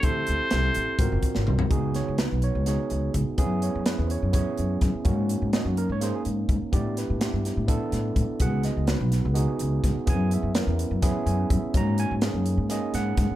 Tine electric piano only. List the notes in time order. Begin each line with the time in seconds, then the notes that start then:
0.02 C4 E4 G4 A4
0.51 C4 E4 G4 A4
0.99 C4 F4 F#4 A#4
1.70 B3 D#4 F#4 G#4
1.96 C#5
2.18 B3 D#4 F#4 B4
2.44 C#5
2.66 B3 D#4 F#4 G#4 C#5
3.38 B3 C#4 E4 G#4
3.63 C#5
3.86 B3 C#4 E4 G#4 B4
4.06 C5
4.11 C#5
4.32 B3 C#4 E4 G#4 C#5
5.05 A#3 C#4 D#4 F#4
5.53 A#3 C#4 D#4 F#4 D#5
5.67 F#4
5.78 A#4
5.92 C#5
6.01 A#3 C#4 D#4 G#4 C5
6.15 G#4
6.72 B3 D4 E4 G4 D5
6.98 B4
7.20 B3 D4 E4 G4
7.68 B3 D4 E4 A4
8.40 B3 D#4 F#4 G#4 F#5
8.65 D#5
8.87 B3 D#4 F#4 B4
9.34 B3 D#4 F#4 G#4
10.06 B3 C#4 E4 G#4 G#5
10.33 E5
10.54 B3 C#4 E4 A#4
11.02 B3 C#4 E4 G#4
11.26 G#5
11.50 E5
11.74 A#3 C#4 D#4 F#4 A#5
12.00 G#5
12.22 A#3 C#4 D#4 G#4
12.69 A#3 C#4 D#4 G#4 D#5
12.95 F#5